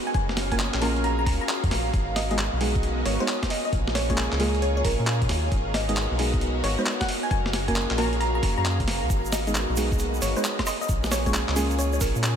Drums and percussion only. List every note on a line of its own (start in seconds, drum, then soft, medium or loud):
0.14 kick loud
0.14 closed hi-hat medium
0.29 snare soft
0.37 snare medium
0.37 open hi-hat loud
0.52 kick medium
0.52 closed hi-hat medium
0.59 clap loud
0.59 closed hi-hat medium
0.74 clap medium
0.82 open hi-hat medium
0.96 closed hi-hat soft
1.04 closed hi-hat medium
1.26 kick loud
1.26 open hi-hat loud
1.49 clap loud
1.49 closed hi-hat medium
1.64 kick loud
1.64 closed hi-hat medium
1.71 snare soft
1.71 open hi-hat loud
1.94 kick loud
1.94 closed hi-hat medium
2.16 snare medium
2.16 open hi-hat loud
2.31 closed hi-hat medium
2.38 clap loud
2.38 closed hi-hat medium
2.61 open hi-hat medium
2.75 kick loud
2.75 closed hi-hat soft
2.83 closed hi-hat medium
3.06 open hi-hat loud
3.28 clap loud
3.28 closed hi-hat medium
3.43 kick medium
3.43 snare medium
3.43 closed hi-hat medium
3.50 open hi-hat loud
3.73 kick loud
3.73 closed hi-hat medium
3.88 snare soft
3.95 snare medium
3.95 open hi-hat loud
4.10 kick medium
4.10 closed hi-hat medium
4.18 clap loud
4.18 closed hi-hat medium
4.32 clap medium
4.40 open hi-hat medium
4.55 closed hi-hat soft
4.62 closed hi-hat medium
4.85 kick loud
4.85 open hi-hat loud
5.07 clap loud
5.07 closed hi-hat medium
5.22 kick medium
5.22 closed hi-hat medium
5.29 snare soft
5.29 open hi-hat loud
5.52 kick loud
5.52 closed hi-hat medium
5.74 snare medium
5.74 open hi-hat loud
5.89 closed hi-hat medium
5.97 clap loud
5.97 closed hi-hat medium
6.19 open hi-hat loud
6.34 kick loud
6.34 closed hi-hat soft
6.41 closed hi-hat medium
6.64 open hi-hat loud
6.86 clap loud
6.86 closed hi-hat medium
7.01 kick medium
7.01 snare medium
7.01 closed hi-hat medium
7.09 open hi-hat loud
7.31 kick loud
7.31 closed hi-hat medium
7.46 snare soft
7.53 snare medium
7.53 open hi-hat loud
7.68 kick medium
7.68 closed hi-hat medium
7.76 clap loud
7.76 closed hi-hat medium
7.91 clap medium
7.98 open hi-hat loud
8.13 closed hi-hat soft
8.21 closed hi-hat medium
8.43 kick loud
8.43 open hi-hat loud
8.65 clap loud
8.65 closed hi-hat medium
8.80 kick medium
8.80 closed hi-hat medium
8.88 snare medium
8.88 open hi-hat loud
9.10 kick loud
9.10 closed hi-hat medium
9.10 shaker medium
9.25 shaker soft
9.32 snare medium
9.32 open hi-hat loud
9.32 shaker medium
9.47 closed hi-hat medium
9.47 shaker soft
9.55 clap loud
9.55 closed hi-hat medium
9.55 shaker medium
9.77 open hi-hat loud
9.77 shaker medium
9.92 kick loud
9.92 closed hi-hat soft
9.92 shaker soft
9.99 closed hi-hat medium
9.99 shaker soft
10.14 shaker soft
10.22 open hi-hat loud
10.22 shaker medium
10.36 shaker soft
10.44 clap loud
10.44 closed hi-hat medium
10.44 shaker medium
10.59 kick medium
10.59 snare medium
10.59 closed hi-hat medium
10.59 high woodblock medium
10.66 open hi-hat loud
10.66 high woodblock medium
10.66 shaker medium
10.82 shaker soft
10.89 kick loud
10.89 closed hi-hat medium
10.89 shaker soft
11.04 snare medium
11.04 shaker soft
11.12 snare medium
11.12 open hi-hat loud
11.12 shaker loud
11.26 kick medium
11.26 closed hi-hat medium
11.26 shaker soft
11.34 clap loud
11.34 closed hi-hat medium
11.34 shaker medium
11.49 clap medium
11.56 open hi-hat loud
11.56 shaker medium
11.71 closed hi-hat soft
11.71 shaker soft
11.79 closed hi-hat medium
11.79 shaker medium
11.93 shaker soft
12.01 kick loud
12.01 open hi-hat loud
12.01 shaker loud
12.16 shaker soft
12.23 clap loud
12.23 closed hi-hat medium
12.23 shaker soft